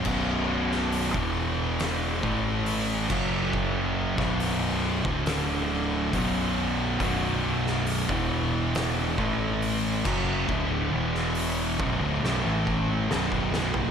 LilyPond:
<<
  \new Staff \with { instrumentName = "Distorted electric guitar" } { \clef bass \time 4/4 \key b \minor \tempo 4 = 69 <b,, fis, b,>4~ <b,, fis, b,>16 <e, b, e>4~ <e, b, e>16 <a, e a>4 <fis, cis fis>8~ | <fis, cis fis>8. <b,, fis, b,>4 <d, a, d>4~ <d, a, d>16 <b,, fis, b,>4 | <b,, fis, b,>4~ <b,, fis, b,>16 <e, b, e>4~ <e, b, e>16 <a, e a>4 <fis, cis fis>8 | <d, a, d>8 <e, b, e>4 <b,, fis,>16 <d, a,>16 <b,, fis,>16 <a, e a>8. <b,, fis, b,>4 | }
  \new Staff \with { instrumentName = "Distorted electric guitar" } { \clef bass \time 4/4 \key b \minor <b,, fis, b,>4~ <b,, fis, b,>16 <e, b, e>4~ <e, b, e>16 <a, e a>4 <fis, cis fis>8~ | <fis, cis fis>8. <b,, fis, b,>4 <d, a, d>4~ <d, a, d>16 <b,, fis, b,>4 | <b,, fis, b,>4~ <b,, fis, b,>16 <e, b, e>4~ <e, b, e>16 <a, e a>4 <fis, cis fis>8 | <d, a, d>8 <e, b, e>4 <b,, fis,>16 <d, a,>16 <b,, fis,>16 <a, e a>8. <b,, fis, b,>4 | }
  \new Staff \with { instrumentName = "Distorted electric guitar" } { \clef bass \time 4/4 \key b \minor <b,, fis, b,>4~ <b,, fis, b,>16 <e, b, e>4~ <e, b, e>16 <a, e a>4 <fis, cis fis>8~ | <fis, cis fis>8. <b,, fis, b,>4 <d, a, d>4~ <d, a, d>16 <b,, fis, b,>4 | <b,, fis, b,>4~ <b,, fis, b,>16 <e, b, e>4~ <e, b, e>16 <a, e a>4 <fis, cis fis>8 | <d, a, d>8 <e, b, e>4 <b,, fis,>16 <d, a,>16 <b,, fis,>16 <a, e a>8. <b,, fis, b,>4 | }
  \new Staff \with { instrumentName = "Fingered electric bass" } { \clef bass \time 4/4 \key b \minor b,,,4~ b,,,16 e,,4~ e,,16 a,,4 fis,,8~ | fis,,8. b,,,4 d,,4~ d,,16 b,,,4 | b,,,4~ b,,,16 e,,4~ e,,16 a,,4 fis,,8 | d,,8 e,,4 b,,,16 d,,16 b,,,16 a,,8. b,,,4 | }
  \new DrumStaff \with { instrumentName = "Drums" } \drummode { \time 4/4 <cymc bd>8. sn16 hho16 bd8. <hho sn>8 bd8 hho8 <cymc bd>8 | bd8. <bd sn>16 hho8. bd16 <hho sn>4 <hho bd>4 | <hho bd>8. sn16 hho16 bd8. <hho sn>8 bd8 hho8 <cymc bd>8 | bd8. sn16 hho8 bd8 sn8 bd8 sn16 bd16 sn16 tomfh16 | }
>>